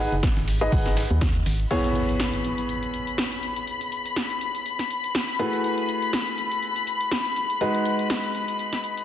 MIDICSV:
0, 0, Header, 1, 6, 480
1, 0, Start_track
1, 0, Key_signature, 4, "minor"
1, 0, Tempo, 491803
1, 1667, Time_signature, 4, 2, 24, 8
1, 8827, End_track
2, 0, Start_track
2, 0, Title_t, "String section"
2, 0, Program_c, 0, 48
2, 1667, Note_on_c, 0, 83, 78
2, 8827, Note_off_c, 0, 83, 0
2, 8827, End_track
3, 0, Start_track
3, 0, Title_t, "Upright piano"
3, 0, Program_c, 1, 0
3, 0, Note_on_c, 1, 63, 91
3, 0, Note_on_c, 1, 68, 90
3, 0, Note_on_c, 1, 71, 87
3, 0, Note_on_c, 1, 78, 102
3, 122, Note_off_c, 1, 71, 0
3, 122, Note_off_c, 1, 78, 0
3, 123, Note_off_c, 1, 63, 0
3, 123, Note_off_c, 1, 68, 0
3, 598, Note_on_c, 1, 63, 98
3, 598, Note_on_c, 1, 68, 94
3, 598, Note_on_c, 1, 71, 92
3, 598, Note_on_c, 1, 75, 114
3, 690, Note_off_c, 1, 63, 0
3, 690, Note_off_c, 1, 68, 0
3, 690, Note_off_c, 1, 71, 0
3, 690, Note_off_c, 1, 75, 0
3, 705, Note_on_c, 1, 71, 85
3, 706, Note_on_c, 1, 63, 87
3, 706, Note_on_c, 1, 68, 78
3, 706, Note_on_c, 1, 78, 98
3, 908, Note_off_c, 1, 63, 0
3, 908, Note_off_c, 1, 68, 0
3, 908, Note_off_c, 1, 71, 0
3, 908, Note_off_c, 1, 78, 0
3, 1665, Note_on_c, 1, 59, 72
3, 1665, Note_on_c, 1, 68, 68
3, 1665, Note_on_c, 1, 73, 78
3, 1666, Note_on_c, 1, 64, 65
3, 5240, Note_off_c, 1, 59, 0
3, 5240, Note_off_c, 1, 64, 0
3, 5240, Note_off_c, 1, 68, 0
3, 5240, Note_off_c, 1, 73, 0
3, 5264, Note_on_c, 1, 57, 76
3, 5264, Note_on_c, 1, 64, 66
3, 5264, Note_on_c, 1, 66, 67
3, 5264, Note_on_c, 1, 68, 70
3, 5264, Note_on_c, 1, 71, 82
3, 7400, Note_off_c, 1, 57, 0
3, 7400, Note_off_c, 1, 64, 0
3, 7400, Note_off_c, 1, 66, 0
3, 7400, Note_off_c, 1, 68, 0
3, 7400, Note_off_c, 1, 71, 0
3, 7426, Note_on_c, 1, 56, 76
3, 7426, Note_on_c, 1, 63, 70
3, 7426, Note_on_c, 1, 66, 68
3, 7426, Note_on_c, 1, 71, 83
3, 8827, Note_off_c, 1, 56, 0
3, 8827, Note_off_c, 1, 63, 0
3, 8827, Note_off_c, 1, 66, 0
3, 8827, Note_off_c, 1, 71, 0
3, 8827, End_track
4, 0, Start_track
4, 0, Title_t, "FM bass"
4, 0, Program_c, 2, 39
4, 120, Note_on_c, 2, 30, 77
4, 301, Note_off_c, 2, 30, 0
4, 359, Note_on_c, 2, 32, 91
4, 669, Note_off_c, 2, 32, 0
4, 706, Note_on_c, 2, 32, 86
4, 1033, Note_off_c, 2, 32, 0
4, 1080, Note_on_c, 2, 39, 107
4, 1389, Note_off_c, 2, 39, 0
4, 1426, Note_on_c, 2, 32, 89
4, 1620, Note_off_c, 2, 32, 0
4, 8827, End_track
5, 0, Start_track
5, 0, Title_t, "Impact"
5, 0, Program_c, 3, 103
5, 1666, Note_on_c, 3, 60, 69
5, 3586, Note_off_c, 3, 60, 0
5, 8827, End_track
6, 0, Start_track
6, 0, Title_t, "Drums"
6, 119, Note_on_c, 9, 42, 43
6, 217, Note_off_c, 9, 42, 0
6, 224, Note_on_c, 9, 38, 123
6, 226, Note_off_c, 9, 38, 0
6, 226, Note_on_c, 9, 36, 118
6, 226, Note_on_c, 9, 38, 113
6, 226, Note_on_c, 9, 42, 71
6, 226, Note_on_c, 9, 51, 90
6, 323, Note_off_c, 9, 38, 0
6, 323, Note_off_c, 9, 42, 0
6, 323, Note_off_c, 9, 51, 0
6, 324, Note_off_c, 9, 36, 0
6, 359, Note_on_c, 9, 38, 55
6, 359, Note_on_c, 9, 42, 42
6, 457, Note_off_c, 9, 38, 0
6, 457, Note_off_c, 9, 42, 0
6, 465, Note_on_c, 9, 51, 71
6, 466, Note_on_c, 9, 46, 101
6, 563, Note_off_c, 9, 46, 0
6, 563, Note_off_c, 9, 51, 0
6, 598, Note_on_c, 9, 42, 43
6, 696, Note_off_c, 9, 42, 0
6, 706, Note_on_c, 9, 36, 117
6, 706, Note_on_c, 9, 42, 72
6, 706, Note_on_c, 9, 46, 83
6, 803, Note_off_c, 9, 42, 0
6, 803, Note_off_c, 9, 46, 0
6, 804, Note_off_c, 9, 36, 0
6, 837, Note_on_c, 9, 38, 38
6, 838, Note_on_c, 9, 42, 40
6, 934, Note_off_c, 9, 38, 0
6, 936, Note_off_c, 9, 42, 0
6, 945, Note_on_c, 9, 46, 104
6, 946, Note_on_c, 9, 38, 106
6, 946, Note_on_c, 9, 51, 82
6, 1043, Note_off_c, 9, 38, 0
6, 1043, Note_off_c, 9, 46, 0
6, 1043, Note_off_c, 9, 51, 0
6, 1078, Note_on_c, 9, 42, 43
6, 1176, Note_off_c, 9, 42, 0
6, 1184, Note_on_c, 9, 38, 123
6, 1186, Note_off_c, 9, 38, 0
6, 1186, Note_on_c, 9, 36, 114
6, 1186, Note_on_c, 9, 38, 113
6, 1186, Note_on_c, 9, 46, 60
6, 1186, Note_on_c, 9, 51, 83
6, 1283, Note_off_c, 9, 38, 0
6, 1283, Note_off_c, 9, 46, 0
6, 1283, Note_off_c, 9, 51, 0
6, 1284, Note_off_c, 9, 36, 0
6, 1318, Note_on_c, 9, 42, 41
6, 1416, Note_off_c, 9, 42, 0
6, 1426, Note_on_c, 9, 46, 98
6, 1426, Note_on_c, 9, 51, 67
6, 1524, Note_off_c, 9, 46, 0
6, 1524, Note_off_c, 9, 51, 0
6, 1558, Note_on_c, 9, 42, 41
6, 1656, Note_off_c, 9, 42, 0
6, 1665, Note_on_c, 9, 42, 62
6, 1665, Note_on_c, 9, 49, 80
6, 1763, Note_off_c, 9, 42, 0
6, 1763, Note_off_c, 9, 49, 0
6, 1799, Note_on_c, 9, 42, 39
6, 1896, Note_off_c, 9, 42, 0
6, 1906, Note_on_c, 9, 42, 94
6, 2003, Note_off_c, 9, 42, 0
6, 2039, Note_on_c, 9, 42, 38
6, 2136, Note_off_c, 9, 42, 0
6, 2144, Note_on_c, 9, 38, 118
6, 2145, Note_on_c, 9, 42, 65
6, 2241, Note_off_c, 9, 38, 0
6, 2243, Note_off_c, 9, 42, 0
6, 2279, Note_on_c, 9, 42, 39
6, 2376, Note_off_c, 9, 42, 0
6, 2386, Note_on_c, 9, 42, 88
6, 2483, Note_off_c, 9, 42, 0
6, 2519, Note_on_c, 9, 42, 40
6, 2616, Note_off_c, 9, 42, 0
6, 2626, Note_on_c, 9, 42, 67
6, 2724, Note_off_c, 9, 42, 0
6, 2759, Note_on_c, 9, 42, 39
6, 2857, Note_off_c, 9, 42, 0
6, 2866, Note_on_c, 9, 42, 92
6, 2964, Note_off_c, 9, 42, 0
6, 2999, Note_on_c, 9, 42, 39
6, 3097, Note_off_c, 9, 42, 0
6, 3105, Note_on_c, 9, 38, 121
6, 3106, Note_on_c, 9, 42, 68
6, 3202, Note_off_c, 9, 38, 0
6, 3204, Note_off_c, 9, 42, 0
6, 3239, Note_on_c, 9, 42, 38
6, 3336, Note_off_c, 9, 42, 0
6, 3346, Note_on_c, 9, 42, 90
6, 3444, Note_off_c, 9, 42, 0
6, 3479, Note_on_c, 9, 42, 38
6, 3577, Note_off_c, 9, 42, 0
6, 3586, Note_on_c, 9, 42, 62
6, 3684, Note_off_c, 9, 42, 0
6, 3719, Note_on_c, 9, 42, 38
6, 3816, Note_off_c, 9, 42, 0
6, 3826, Note_on_c, 9, 42, 89
6, 3923, Note_off_c, 9, 42, 0
6, 3959, Note_on_c, 9, 42, 39
6, 4057, Note_off_c, 9, 42, 0
6, 4064, Note_on_c, 9, 38, 116
6, 4066, Note_on_c, 9, 42, 63
6, 4162, Note_off_c, 9, 38, 0
6, 4163, Note_off_c, 9, 42, 0
6, 4199, Note_on_c, 9, 42, 39
6, 4296, Note_off_c, 9, 42, 0
6, 4306, Note_on_c, 9, 42, 85
6, 4403, Note_off_c, 9, 42, 0
6, 4439, Note_on_c, 9, 42, 38
6, 4537, Note_off_c, 9, 42, 0
6, 4547, Note_on_c, 9, 42, 66
6, 4644, Note_off_c, 9, 42, 0
6, 4678, Note_on_c, 9, 38, 35
6, 4679, Note_on_c, 9, 42, 36
6, 4775, Note_off_c, 9, 38, 0
6, 4777, Note_off_c, 9, 42, 0
6, 4787, Note_on_c, 9, 42, 90
6, 4884, Note_off_c, 9, 42, 0
6, 4919, Note_on_c, 9, 42, 38
6, 5017, Note_off_c, 9, 42, 0
6, 5025, Note_on_c, 9, 38, 121
6, 5027, Note_on_c, 9, 42, 63
6, 5123, Note_off_c, 9, 38, 0
6, 5124, Note_off_c, 9, 42, 0
6, 5159, Note_on_c, 9, 42, 37
6, 5257, Note_off_c, 9, 42, 0
6, 5266, Note_on_c, 9, 42, 88
6, 5364, Note_off_c, 9, 42, 0
6, 5399, Note_on_c, 9, 42, 36
6, 5497, Note_off_c, 9, 42, 0
6, 5506, Note_on_c, 9, 42, 62
6, 5604, Note_off_c, 9, 42, 0
6, 5639, Note_on_c, 9, 42, 38
6, 5737, Note_off_c, 9, 42, 0
6, 5746, Note_on_c, 9, 42, 84
6, 5844, Note_off_c, 9, 42, 0
6, 5879, Note_on_c, 9, 42, 37
6, 5977, Note_off_c, 9, 42, 0
6, 5985, Note_on_c, 9, 38, 122
6, 5986, Note_on_c, 9, 42, 64
6, 6083, Note_off_c, 9, 38, 0
6, 6084, Note_off_c, 9, 42, 0
6, 6120, Note_on_c, 9, 42, 36
6, 6217, Note_off_c, 9, 42, 0
6, 6226, Note_on_c, 9, 42, 81
6, 6324, Note_off_c, 9, 42, 0
6, 6359, Note_on_c, 9, 42, 37
6, 6457, Note_off_c, 9, 42, 0
6, 6466, Note_on_c, 9, 42, 62
6, 6564, Note_off_c, 9, 42, 0
6, 6599, Note_on_c, 9, 42, 35
6, 6696, Note_off_c, 9, 42, 0
6, 6706, Note_on_c, 9, 42, 86
6, 6804, Note_off_c, 9, 42, 0
6, 6839, Note_on_c, 9, 42, 37
6, 6936, Note_off_c, 9, 42, 0
6, 6944, Note_on_c, 9, 38, 123
6, 6946, Note_on_c, 9, 42, 64
6, 7042, Note_off_c, 9, 38, 0
6, 7043, Note_off_c, 9, 42, 0
6, 7080, Note_on_c, 9, 42, 35
6, 7177, Note_off_c, 9, 42, 0
6, 7187, Note_on_c, 9, 42, 85
6, 7284, Note_off_c, 9, 42, 0
6, 7320, Note_on_c, 9, 42, 36
6, 7417, Note_off_c, 9, 42, 0
6, 7426, Note_on_c, 9, 42, 59
6, 7524, Note_off_c, 9, 42, 0
6, 7560, Note_on_c, 9, 42, 36
6, 7657, Note_off_c, 9, 42, 0
6, 7666, Note_on_c, 9, 42, 83
6, 7764, Note_off_c, 9, 42, 0
6, 7799, Note_on_c, 9, 42, 35
6, 7897, Note_off_c, 9, 42, 0
6, 7905, Note_on_c, 9, 38, 118
6, 7907, Note_on_c, 9, 42, 62
6, 8003, Note_off_c, 9, 38, 0
6, 8004, Note_off_c, 9, 42, 0
6, 8040, Note_on_c, 9, 42, 35
6, 8137, Note_off_c, 9, 42, 0
6, 8147, Note_on_c, 9, 42, 82
6, 8244, Note_off_c, 9, 42, 0
6, 8279, Note_on_c, 9, 42, 36
6, 8377, Note_off_c, 9, 42, 0
6, 8386, Note_on_c, 9, 42, 62
6, 8484, Note_off_c, 9, 42, 0
6, 8517, Note_on_c, 9, 38, 34
6, 8519, Note_on_c, 9, 42, 35
6, 8615, Note_off_c, 9, 38, 0
6, 8616, Note_off_c, 9, 42, 0
6, 8626, Note_on_c, 9, 42, 84
6, 8724, Note_off_c, 9, 42, 0
6, 8760, Note_on_c, 9, 42, 36
6, 8827, Note_off_c, 9, 42, 0
6, 8827, End_track
0, 0, End_of_file